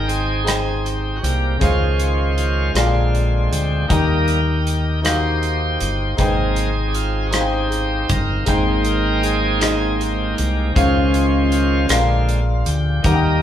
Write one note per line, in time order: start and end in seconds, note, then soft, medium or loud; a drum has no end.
0.00 1.19 G#1 medium
0.00 0.43 G#2 soft
0.00 0.22 D#4 medium
0.00 0.22 G#4 medium
0.00 0.22 C5 medium
0.00 0.26 G5 medium
0.00 0.43 G5 medium
0.08 1.19 C4 medium
0.08 1.19 D#4 medium
0.08 0.87 G#4 medium
0.08 closed hi-hat soft
0.44 1.35 D#4 soft
0.44 1.36 G#4 soft
0.44 1.36 C5 soft
0.44 1.37 G5 medium
0.44 closed hi-hat medium
0.48 cross-stick medium
0.85 1.17 G4 medium
0.85 closed hi-hat soft
1.16 1.23 F#4 medium
1.23 1.58 C2 medium
1.23 1.58 C3 soft
1.23 1.58 G3 soft
1.23 1.58 A#3 soft
1.23 1.63 G4 medium
1.23 closed hi-hat medium
1.59 2.72 C#2 medium
1.59 2.72 C#3 soft
1.59 2.72 D#3 soft
1.59 2.50 C#4 medium
1.59 2.73 C#4 soft
1.59 2.34 F4 medium
1.59 2.51 G#4 medium
1.59 2.51 C5 medium
1.59 2.72 C5 soft
1.59 2.51 F5 medium
1.59 kick medium
1.59 closed hi-hat medium
1.63 2.73 F3 soft
1.63 2.35 G#3 soft
2.00 closed hi-hat soft
2.37 2.73 G#3 soft
2.37 3.48 F4 medium
2.37 closed hi-hat soft
2.74 3.48 A#1 medium
2.74 3.86 A#2 soft
2.74 3.86 D3 soft
2.74 3.86 G#3 soft
2.74 3.86 C4 soft
2.74 3.65 D4 medium
2.74 3.65 G#4 soft
2.74 3.66 A#4 soft
2.74 3.67 F5 medium
2.74 cross-stick medium
2.74 closed hi-hat medium
3.15 closed hi-hat soft
3.52 3.87 D2 medium
3.52 3.87 G4 medium
3.52 closed hi-hat medium
3.88 5.77 D#2 medium
3.88 4.40 D#3 soft
3.88 5.01 D#3 soft
3.88 4.41 G3 soft
3.88 4.41 A#3 soft
3.88 4.79 D#4 medium
3.88 5.01 D#4 medium
3.88 5.00 G4 medium
3.88 4.80 G4 medium
3.88 5.00 A#4 medium
3.88 4.80 A#4 medium
3.88 4.81 G5 medium
3.88 kick medium
3.88 closed hi-hat medium
4.28 closed hi-hat soft
4.67 closed hi-hat soft
5.01 5.93 D#4 medium
5.01 6.15 D#4 medium
5.01 5.10 F#4 soft
5.01 6.15 G4 medium
5.01 5.94 A#4 soft
5.01 6.23 C5 medium
5.01 5.95 F5 medium
5.01 closed hi-hat medium
5.06 5.97 G4 soft
5.06 cross-stick medium
5.43 closed hi-hat soft
5.81 6.16 G1 medium
5.81 closed hi-hat medium
6.17 8.05 G#1 medium
6.17 7.29 G#2 soft
6.17 6.70 C3 soft
6.17 6.70 G#3 soft
6.17 7.34 C4 soft
6.17 7.08 D#4 medium
6.17 7.33 D#4 soft
6.17 7.08 G#4 medium
6.17 6.26 B4 soft
6.17 7.09 G5 medium
6.17 kick medium
6.17 closed hi-hat medium
6.21 6.71 A#3 soft
6.21 7.69 G#4 medium
6.25 7.12 C5 medium
6.56 closed hi-hat soft
6.88 6.95 G4 medium
6.95 7.27 F4 medium
6.95 closed hi-hat soft
7.26 7.33 F#4 medium
7.31 8.45 C4 medium
7.31 8.22 D#4 medium
7.31 8.44 D#4 medium
7.31 8.12 G4 medium
7.31 8.22 G#4 soft
7.31 8.23 C5 medium
7.31 7.41 F5 soft
7.31 cross-stick medium
7.31 closed hi-hat medium
7.41 8.27 G5 medium
7.72 closed hi-hat soft
8.09 8.45 G1 medium
8.09 8.49 A#4 medium
8.09 kick medium
8.09 closed hi-hat medium
8.46 10.34 G#1 medium
8.46 9.58 G#2 soft
8.46 10.73 G#3 soft
8.46 10.73 A#3 soft
8.46 9.24 C4 soft
8.46 9.36 D#4 medium
8.46 9.23 D#4 medium
8.46 9.37 G#4 medium
8.46 9.37 C5 medium
8.46 8.88 C5 medium
8.46 9.38 G5 medium
8.46 9.59 G5 medium
8.46 kick medium
8.46 closed hi-hat medium
8.85 9.25 A#4 medium
8.85 closed hi-hat soft
9.23 10.35 C4 medium
9.23 10.35 D#4 medium
9.23 10.02 G#4 medium
9.23 closed hi-hat soft
9.60 10.51 D#4 soft
9.60 10.51 G#4 soft
9.60 10.52 C5 soft
9.60 10.52 D#5 medium
9.60 cross-stick medium
9.60 clap medium
9.60 closed hi-hat medium
10.00 10.37 G4 medium
10.00 closed hi-hat soft
10.38 10.74 C2 medium
10.38 10.74 G4 medium
10.38 closed hi-hat medium
10.75 11.86 C#2 medium
10.75 11.87 C#3 medium
10.75 11.86 D#3 soft
10.75 11.86 F3 soft
10.75 11.51 G#3 soft
10.75 11.65 C#4 medium
10.75 11.86 C#4 soft
10.75 11.51 F4 medium
10.75 11.66 G#4 medium
10.75 11.86 C5 medium
10.75 11.66 C5 medium
10.75 11.67 F5 medium
10.75 kick medium
10.75 closed hi-hat medium
11.14 closed hi-hat soft
11.52 11.88 G#3 medium
11.52 12.70 F4 medium
11.52 closed hi-hat soft
11.88 12.62 A#1 medium
11.88 13.01 A#2 medium
11.88 12.40 D3 soft
11.88 12.40 G#3 soft
11.88 12.41 C4 medium
11.88 12.79 D4 soft
11.88 12.80 G#4 soft
11.88 12.80 A#4 soft
11.88 12.81 F5 medium
11.88 cross-stick medium
11.88 clap medium
11.88 closed hi-hat medium
12.29 closed hi-hat soft
12.66 13.01 D2 medium
12.66 13.02 G4 medium
12.66 closed hi-hat medium
13.03 13.42 D#2 medium
13.03 13.42 D#3 soft
13.03 13.42 D#3 medium
13.03 13.42 G3 soft
13.03 13.42 A#3 medium
13.03 13.42 D#4 medium
13.03 13.42 G4 medium
13.03 13.42 A#4 medium
13.03 kick medium
13.03 closed hi-hat medium
13.07 13.12 F#5 soft
13.14 13.42 G5 medium